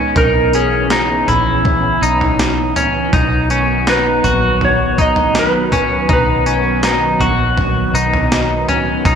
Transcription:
0.00 0.12 A#1 medium
0.00 0.14 G#3 medium
0.00 0.13 B3 medium
0.00 0.17 C#4 medium
0.00 0.14 D#4 medium
0.00 0.17 B4 loud
0.16 1.24 B1 loud
0.16 3.10 E3 medium
0.16 9.01 B3 medium
0.16 3.10 C#4 medium
0.16 0.54 D#4 medium
0.16 0.55 A#4 loud
0.16 kick loud
0.16 floor tom loud
0.16 tambourine medium
0.53 0.91 C#4 medium
0.53 1.99 G#4 medium
0.53 tambourine medium
0.90 1.28 D#4 medium
0.90 snare loud
0.90 tambourine medium
1.28 1.98 A#1 medium
1.28 2.02 E4 medium
1.28 floor tom medium
1.28 tambourine medium
1.65 kick medium
1.65 floor tom medium
2.02 2.72 B1 loud
2.02 2.76 D#4 medium
2.02 tambourine medium
2.21 floor tom medium
2.39 snare loud
2.39 tambourine medium
2.76 3.13 C#4 medium
2.76 floor tom medium
2.76 tambourine medium
3.13 4.20 B1 loud
3.13 9.15 D#3 medium
3.13 9.02 F#3 medium
3.13 3.50 D#4 medium
3.13 kick loud
3.13 floor tom loud
3.13 tambourine medium
3.50 3.87 C#4 medium
3.50 tambourine medium
3.87 4.24 D#4 medium
3.87 4.64 B4 medium
3.87 snare loud
3.87 tambourine medium
4.24 6.05 A#1 medium
4.24 4.98 F#4 medium
4.24 floor tom medium
4.24 tambourine medium
4.61 5.01 C#5 medium
4.61 floor tom medium
4.98 5.72 D#4 medium
4.98 5.38 D#5 loud
4.98 kick medium
4.98 tambourine medium
5.16 floor tom medium
5.35 snare loud
5.35 tambourine medium
5.39 6.12 B4 medium
5.72 6.09 C#4 medium
5.72 kick medium
5.72 floor tom medium
5.72 tambourine medium
6.09 7.17 B1 loud
6.09 6.46 D#4 loud
6.09 7.18 B4 medium
6.09 kick loud
6.09 floor tom loud
6.09 tambourine medium
6.46 6.83 C#4 medium
6.46 tambourine medium
6.83 7.21 D#4 medium
6.83 snare loud
6.83 tambourine medium
7.20 7.90 A#1 medium
7.20 7.95 F#4 medium
7.20 floor tom medium
7.20 tambourine medium
7.57 kick medium
7.57 floor tom medium
7.94 8.64 B1 loud
7.94 8.68 D#4 medium
7.94 tambourine medium
8.13 floor tom medium
8.32 snare loud
8.32 tambourine medium
8.68 9.05 C#4 medium
8.68 floor tom medium
8.68 tambourine medium
9.05 9.15 B1 loud
9.05 9.15 G#3 medium
9.05 9.15 B3 medium
9.05 9.15 D#4 medium
9.05 kick loud
9.05 floor tom loud
9.05 tambourine medium

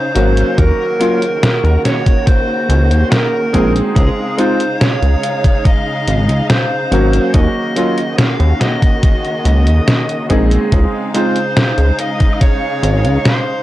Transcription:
0.00 0.55 C#3 medium
0.00 0.55 C#4 medium
0.00 0.55 D#4 medium
0.00 0.59 C5 medium
0.00 0.55 F5 medium
0.15 0.43 G#1 medium
0.15 0.95 F#3 medium
0.15 0.95 A#3 medium
0.15 0.95 C#4 medium
0.15 0.96 F#4 loud
0.15 closed hi-hat medium
0.37 closed hi-hat medium
0.58 0.72 D#2 loud
0.58 3.93 C#3 medium
0.58 3.93 D#3 medium
0.58 3.93 A#3 medium
0.58 3.93 F#4 loud
0.58 1.81 A#4 loud
0.58 kick loud
0.58 closed hi-hat medium
1.00 1.21 F#3 medium
1.00 1.21 A#3 medium
1.00 1.21 C#4 medium
1.00 1.22 F4 loud
1.00 closed hi-hat medium
1.22 closed hi-hat medium
1.43 snare loud
1.43 closed hi-hat medium
1.64 1.77 D#2 medium
1.64 closed hi-hat soft
1.85 2.25 C#5 medium
1.85 snare medium
1.85 closed hi-hat medium
2.06 kick loud
2.06 closed hi-hat medium
2.27 3.08 C5 medium
2.27 kick loud
2.27 closed hi-hat medium
2.69 2.92 C#2 loud
2.69 closed hi-hat medium
2.90 3.04 D#2 loud
2.90 closed hi-hat medium
3.11 3.71 A#4 medium
3.11 snare loud
3.11 closed hi-hat medium
3.53 3.82 A#1 medium
3.53 4.33 G#3 medium
3.53 4.33 C4 medium
3.53 4.33 D#4 medium
3.53 4.34 G#4 loud
3.53 kick medium
3.53 closed hi-hat medium
3.76 closed hi-hat medium
3.96 4.10 C#2 loud
3.96 7.31 C#3 medium
3.96 7.31 G#3 medium
3.96 7.31 D#4 medium
3.96 4.40 G#4 loud
3.96 7.31 F5 loud
3.96 kick loud
3.96 closed hi-hat medium
4.37 4.59 G#3 medium
4.37 4.59 C4 medium
4.37 4.59 D#4 medium
4.37 4.60 F4 loud
4.37 4.81 C5 loud
4.37 closed hi-hat medium
4.60 closed hi-hat medium
4.81 5.65 C#5 loud
4.81 snare loud
4.81 closed hi-hat medium
5.02 5.16 C#2 medium
5.02 closed hi-hat soft
5.23 closed hi-hat medium
5.44 kick loud
5.44 closed hi-hat medium
5.65 6.46 D#5 medium
5.65 kick loud
5.65 closed hi-hat medium
6.07 6.30 G#1 medium
6.07 closed hi-hat medium
6.28 6.42 C#2 loud
6.28 closed hi-hat medium
6.50 7.34 C5 loud
6.50 snare loud
6.50 closed hi-hat medium
6.91 7.19 G#1 medium
6.91 7.71 F#3 medium
6.91 7.72 A#3 medium
6.91 7.72 C#4 medium
6.91 7.72 F#4 loud
6.91 closed hi-hat medium
7.13 closed hi-hat medium
7.34 7.48 D#2 loud
7.34 10.69 C#3 medium
7.34 10.69 D#3 medium
7.34 10.69 A#3 medium
7.34 10.69 F#4 medium
7.34 8.15 D#5 loud
7.34 kick loud
7.34 closed hi-hat medium
7.76 7.97 F#3 medium
7.76 7.97 A#3 medium
7.76 7.98 C#4 medium
7.76 7.98 F4 loud
7.76 closed hi-hat medium
7.98 closed hi-hat soft
8.18 8.58 F5 loud
8.18 snare loud
8.18 closed hi-hat medium
8.40 8.53 D#2 medium
8.40 closed hi-hat soft
8.61 10.26 D#5 loud
8.61 snare medium
8.61 closed hi-hat medium
8.82 kick loud
8.82 closed hi-hat medium
9.03 kick loud
9.03 closed hi-hat medium
9.25 closed hi-hat soft
9.45 9.68 C#2 loud
9.45 closed hi-hat medium
9.67 9.80 D#2 loud
9.67 closed hi-hat medium
9.88 snare loud
9.88 closed hi-hat medium
10.09 closed hi-hat soft
10.29 10.58 A#1 medium
10.29 11.09 G#3 medium
10.29 11.09 C4 medium
10.29 11.10 D#4 medium
10.29 11.10 G#4 loud
10.29 kick medium
10.29 closed hi-hat medium
10.51 closed hi-hat medium
10.72 10.86 C#2 medium
10.72 13.63 C#3 medium
10.72 13.63 G#3 medium
10.72 13.63 D#4 medium
10.72 13.63 F5 medium
10.72 kick loud
10.72 closed hi-hat medium
11.14 11.35 G#3 medium
11.14 11.35 C4 medium
11.14 11.36 D#4 medium
11.14 11.36 F4 medium
11.14 12.00 C5 loud
11.14 closed hi-hat medium
11.36 closed hi-hat soft
11.57 snare loud
11.57 closed hi-hat medium
11.78 11.91 C#2 medium
11.78 closed hi-hat soft
11.99 12.33 D#5 loud
11.99 closed hi-hat medium
12.20 kick loud
12.20 closed hi-hat medium
12.34 12.41 D#5 medium
12.41 13.26 C#5 medium
12.41 kick loud
12.41 closed hi-hat medium
12.83 13.06 G#1 medium
12.83 closed hi-hat medium
13.05 13.18 C#2 loud
13.05 closed hi-hat soft
13.25 13.63 C5 loud
13.25 snare loud
13.25 closed hi-hat medium

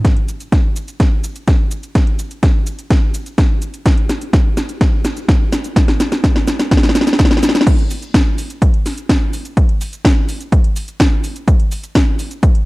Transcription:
0.05 kick loud
0.05 snare soft
0.05 closed hi-hat medium
0.05 cabasa soft
0.17 closed hi-hat soft
0.28 closed hi-hat medium
0.28 cabasa medium
0.40 closed hi-hat medium
0.40 cabasa soft
0.52 kick loud
0.52 snare soft
0.52 closed hi-hat medium
0.52 cabasa soft
0.76 closed hi-hat medium
0.76 cabasa medium
0.88 closed hi-hat medium
0.88 cabasa soft
1.00 kick loud
1.00 snare medium
1.00 closed hi-hat medium
1.00 cabasa soft
1.24 closed hi-hat medium
1.24 cabasa medium
1.36 closed hi-hat medium
1.36 cabasa soft
1.48 kick loud
1.48 snare medium
1.48 closed hi-hat medium
1.48 cabasa soft
1.71 closed hi-hat medium
1.71 cabasa medium
1.83 closed hi-hat medium
1.83 cabasa soft
1.95 kick loud
1.95 snare medium
1.95 closed hi-hat medium
1.95 cabasa soft
2.07 closed hi-hat soft
2.19 closed hi-hat medium
2.19 cabasa medium
2.31 closed hi-hat medium
2.31 cabasa soft
2.43 kick loud
2.43 snare medium
2.43 closed hi-hat medium
2.43 cabasa soft
2.67 closed hi-hat medium
2.67 cabasa medium
2.79 closed hi-hat medium
2.79 cabasa soft
2.90 kick loud
2.90 snare medium
2.90 closed hi-hat medium
2.90 cabasa soft
3.14 closed hi-hat medium
3.14 cabasa medium
3.26 closed hi-hat medium
3.26 cabasa soft
3.38 kick loud
3.38 snare medium
3.38 closed hi-hat medium
3.38 cabasa soft
3.62 closed hi-hat medium
3.62 cabasa medium
3.74 closed hi-hat medium
3.74 cabasa soft
3.86 kick loud
3.86 snare medium
3.86 closed hi-hat medium
3.86 cabasa soft
3.98 closed hi-hat soft
4.09 snare medium
4.09 closed hi-hat medium
4.09 cabasa medium
4.21 closed hi-hat medium
4.21 cabasa soft
4.33 kick loud
4.33 snare medium
4.33 closed hi-hat medium
4.33 cabasa soft
4.57 snare medium
4.57 closed hi-hat medium
4.57 cabasa medium
4.69 closed hi-hat medium
4.69 cabasa soft
4.81 kick loud
4.81 snare medium
4.81 closed hi-hat medium
4.81 cabasa soft
5.05 snare medium
5.05 closed hi-hat medium
5.05 cabasa medium
5.17 closed hi-hat medium
5.17 cabasa soft
5.29 kick loud
5.29 snare medium
5.29 closed hi-hat medium
5.29 cabasa soft
5.52 snare medium
5.52 closed hi-hat medium
5.52 cabasa medium
5.64 closed hi-hat medium
5.64 cabasa soft
5.76 kick loud
5.76 snare medium
5.76 closed hi-hat medium
5.76 cabasa soft
5.88 snare medium
5.88 closed hi-hat soft
6.00 snare medium
6.00 closed hi-hat medium
6.00 cabasa medium
6.12 snare medium
6.12 closed hi-hat medium
6.12 cabasa soft
6.24 kick loud
6.24 snare loud
6.24 closed hi-hat medium
6.24 cabasa soft
6.36 snare medium
6.48 snare medium
6.48 closed hi-hat medium
6.48 cabasa medium
6.59 snare medium
6.59 closed hi-hat medium
6.59 cabasa soft
6.71 kick loud
6.71 snare loud
6.71 closed hi-hat medium
6.71 cabasa soft
6.77 snare medium
6.83 snare medium
6.83 closed hi-hat soft
6.89 snare medium
6.95 snare loud
6.95 closed hi-hat medium
6.95 cabasa medium
7.01 snare medium
7.07 snare medium
7.07 closed hi-hat medium
7.07 cabasa soft
7.13 snare medium
7.19 kick loud
7.19 snare loud
7.19 closed hi-hat medium
7.19 cabasa soft
7.25 snare medium
7.31 snare medium
7.37 snare medium
7.43 snare loud
7.43 closed hi-hat medium
7.43 cabasa medium
7.49 snare loud
7.55 snare medium
7.55 closed hi-hat medium
7.55 cabasa soft
7.61 snare loud
7.67 kick loud
7.67 closed hi-hat medium
7.67 crash loud
7.67 cabasa soft
7.79 closed hi-hat soft
7.90 open hi-hat loud
7.90 cabasa medium
8.02 closed hi-hat medium
8.02 cabasa soft
8.14 kick loud
8.14 snare loud
8.14 closed hi-hat medium
8.14 cabasa soft
8.38 open hi-hat loud
8.38 cabasa medium
8.50 closed hi-hat medium
8.50 cabasa soft
8.62 kick loud
8.62 closed hi-hat medium
8.62 cabasa soft
8.74 closed hi-hat soft
8.86 snare soft
8.86 open hi-hat loud
8.86 cabasa medium
8.98 closed hi-hat medium
8.98 cabasa soft
9.09 kick loud
9.09 snare loud
9.09 closed hi-hat medium
9.09 cabasa soft
9.33 open hi-hat loud
9.33 cabasa medium
9.45 closed hi-hat medium
9.45 cabasa soft
9.57 kick loud
9.57 closed hi-hat medium
9.57 cabasa soft
9.69 closed hi-hat soft
9.81 open hi-hat loud
9.81 cabasa medium
9.93 closed hi-hat medium
9.93 cabasa soft
10.05 kick loud
10.05 snare loud
10.05 closed hi-hat medium
10.05 cabasa soft
10.29 open hi-hat loud
10.29 cabasa medium
10.41 closed hi-hat medium
10.41 cabasa soft
10.52 kick loud
10.52 closed hi-hat medium
10.52 cabasa soft
10.64 closed hi-hat soft
10.76 open hi-hat loud
10.76 cabasa medium
10.88 closed hi-hat medium
10.88 cabasa soft
11.00 kick loud
11.00 snare loud
11.00 closed hi-hat medium
11.00 cabasa soft
11.24 open hi-hat loud
11.24 cabasa medium
11.36 closed hi-hat medium
11.36 cabasa soft
11.48 kick loud
11.48 closed hi-hat medium
11.48 cabasa soft
11.60 closed hi-hat soft
11.72 open hi-hat loud
11.72 cabasa medium
11.83 closed hi-hat medium
11.83 cabasa soft
11.95 kick loud
11.95 snare loud
11.95 closed hi-hat medium
11.95 cabasa soft
12.19 open hi-hat loud
12.19 cabasa medium
12.31 closed hi-hat medium
12.31 cabasa soft
12.43 kick loud
12.43 closed hi-hat medium
12.43 cabasa soft
12.55 closed hi-hat soft

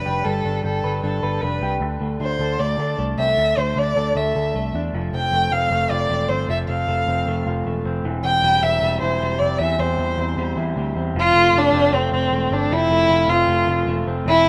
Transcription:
0.00 0.24 G3 medium
0.00 0.45 D4 medium
0.00 0.26 B4 medium
0.00 0.83 B4 medium
0.06 0.22 F1 medium
0.06 0.63 G4 medium
0.25 0.41 G1 medium
0.25 1.81 G3 medium
0.25 0.64 A4 medium
0.45 0.61 G1 medium
0.45 1.03 D4 medium
0.64 0.80 G1 medium
0.64 1.61 G4 medium
0.64 1.01 A4 medium
0.84 1.00 G1 medium
0.84 1.22 B4 medium
1.03 1.19 G1 medium
1.03 1.42 D4 medium
1.03 1.43 A4 medium
1.23 1.39 G1 medium
1.23 1.85 B4 medium
1.41 1.58 F1 medium
1.41 2.21 D4 medium
1.41 1.71 B4 medium
1.61 1.77 C2 medium
1.61 1.85 G4 medium
1.80 1.96 D2 medium
1.80 3.37 D3 medium
2.01 2.17 D2 medium
2.01 2.60 A3 medium
2.20 2.36 D2 medium
2.20 3.18 D4 medium
2.20 2.61 C5 medium
2.39 2.55 D2 medium
2.39 2.79 A4 medium
2.59 2.75 D2 medium
2.59 2.99 A3 medium
2.59 2.98 D5 medium
2.78 2.94 D2 medium
2.78 3.96 A4 medium
2.99 3.14 C2 medium
2.99 3.58 A3 medium
3.18 3.34 C2 medium
3.18 3.29 C4 medium
3.18 3.59 E5 loud
3.29 3.76 D4 soft
3.37 3.53 D2 medium
3.37 4.94 D3 medium
3.57 3.73 D2 medium
3.57 4.16 A3 medium
3.57 3.80 C5 medium
3.76 3.92 D2 medium
3.76 4.74 D4 medium
3.76 4.18 D5 medium
3.96 4.12 D2 medium
3.96 4.36 A4 medium
4.15 4.31 D2 medium
4.15 4.55 A3 medium
4.15 4.74 E5 medium
4.36 4.51 D2 medium
4.36 5.91 A4 medium
4.55 4.70 C2 medium
4.55 5.33 A3 medium
4.74 4.90 E2 medium
4.74 4.98 D4 medium
4.94 5.09 F1 medium
4.94 6.48 F3 medium
5.13 5.29 F1 medium
5.13 5.53 C4 medium
5.13 5.54 G5 medium
5.31 5.48 F1 medium
5.31 5.71 A3 medium
5.51 5.67 F1 medium
5.51 6.29 C4 medium
5.51 5.92 F5 loud
5.70 5.87 F1 medium
5.70 6.09 A3 medium
5.90 6.06 F1 medium
5.90 7.46 F4 medium
5.90 6.30 D5 medium
6.10 6.26 E1 medium
6.10 6.87 A3 medium
6.29 6.45 G1 medium
6.29 6.69 C4 medium
6.29 6.48 C5 medium
6.49 6.65 F1 medium
6.49 8.05 F3 medium
6.49 6.58 E5 medium
6.68 6.84 F1 medium
6.68 7.08 C4 medium
6.68 7.42 F5 medium
6.88 7.04 F1 loud
6.88 7.26 A3 medium
7.07 7.23 F1 medium
7.07 7.85 C4 medium
7.27 7.43 F1 loud
7.27 7.65 A3 medium
7.46 7.62 F1 medium
7.46 8.09 F4 medium
7.66 7.82 E1 medium
7.66 8.09 A3 medium
7.85 8.01 F1 medium
7.85 8.24 C4 medium
8.04 8.20 E1 medium
8.04 9.60 E3 medium
8.23 8.39 E1 medium
8.23 8.63 C4 medium
8.23 8.64 G5 loud
8.42 8.59 E1 loud
8.42 8.82 G3 medium
8.62 8.78 E1 medium
8.62 9.41 C4 medium
8.62 9.00 E5 medium
8.82 8.98 E1 loud
8.82 9.21 G3 medium
9.01 9.18 E1 medium
9.01 10.56 E4 medium
9.01 9.41 C5 medium
9.21 9.37 E1 medium
9.21 9.99 G3 medium
9.39 9.56 F1 medium
9.39 9.81 C4 medium
9.39 9.60 D5 medium
9.59 9.76 E2 medium
9.59 11.16 E3 medium
9.59 9.82 E5 medium
9.79 9.95 E2 medium
9.79 10.19 C4 medium
9.79 10.58 C5 medium
9.98 10.15 E2 loud
9.98 10.37 G3 medium
10.18 10.34 E2 loud
10.18 10.96 C4 medium
10.37 10.53 E2 loud
10.37 10.77 G3 medium
10.57 10.73 E2 medium
10.57 11.20 E4 medium
10.77 10.93 D2 loud
10.77 11.20 G3 medium
10.96 11.12 E2 medium
10.96 11.74 C4 medium
11.15 11.31 F1 loud
11.15 12.70 F3 medium
11.19 11.59 F4 loud
11.34 11.50 F1 medium
11.34 11.92 A3 medium
11.53 11.70 F1 loud
11.53 12.13 F4 medium
11.58 11.96 D4 loud
11.73 11.89 F1 medium
11.73 12.52 C4 medium
11.93 12.09 F1 loud
11.93 12.31 A3 medium
11.93 12.12 C4 medium
12.12 12.28 F1 medium
12.12 12.55 C4 medium
12.31 12.47 E1 loud
12.31 12.90 A3 medium
12.51 12.67 G1 medium
12.51 13.29 C4 medium
12.51 12.74 D4 medium
12.71 12.87 F1 medium
12.71 14.26 F3 medium
12.71 13.31 E4 loud
12.89 13.05 F1 loud
12.89 13.48 A3 medium
13.09 13.25 F1 loud
13.09 13.67 F4 medium
13.28 13.44 F1 loud
13.28 14.07 C4 medium
13.28 13.87 F4 medium
13.47 13.64 F1 loud
13.47 13.87 A3 medium
13.67 13.83 F1 loud
13.67 14.30 F4 medium
13.87 14.03 E1 medium
13.87 14.30 A3 medium
14.06 14.22 F1 medium
14.06 14.49 C4 medium
14.26 14.42 E1 loud
14.26 14.49 E3 medium
14.26 14.49 E4 loud
14.45 14.49 E1 medium

